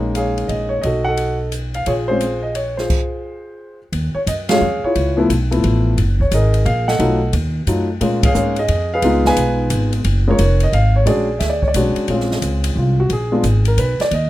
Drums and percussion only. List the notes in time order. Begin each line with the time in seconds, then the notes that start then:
0.15 hi-hat pedal, ride
0.38 ride
0.49 ride
0.83 kick, ride
1.17 ride
1.52 hi-hat pedal, ride
1.74 ride
1.86 kick, ride
2.21 hi-hat pedal, ride
2.55 ride
2.78 snare
2.90 kick, crash
3.93 kick, ride
4.27 kick, hi-hat pedal, ride
4.49 snare, ride
4.95 kick, ride
5.30 kick, hi-hat pedal, ride
5.52 ride
5.64 kick, ride
5.98 kick, ride
6.20 kick
6.32 kick, hi-hat pedal, ride
6.54 ride
6.66 kick, ride
6.88 snare
7.00 kick, ride
7.33 kick, ride
7.67 kick, hi-hat pedal, ride
8.01 kick, ride
8.23 kick, ride
8.35 hi-hat pedal
8.56 ride
8.68 kick, ride
9.02 kick, ride
9.25 snare
9.37 kick, hi-hat pedal, ride
9.70 kick, hi-hat pedal, ride
9.93 ride
10.04 kick, ride
10.39 kick, hi-hat pedal, ride
10.60 ride
10.73 kick, ride
11.07 kick, ride
11.40 kick, snare, ride
11.63 kick
11.74 kick, hi-hat pedal, ride
11.96 ride
12.08 kick, ride
12.20 snare
12.31 snare
12.42 kick, hi-hat pedal, ride
12.64 ride
12.76 kick
13.10 kick, ride
13.44 kick, hi-hat pedal, ride
13.65 ride
13.78 kick, hi-hat pedal, ride
14.00 snare, ride
14.11 kick, ride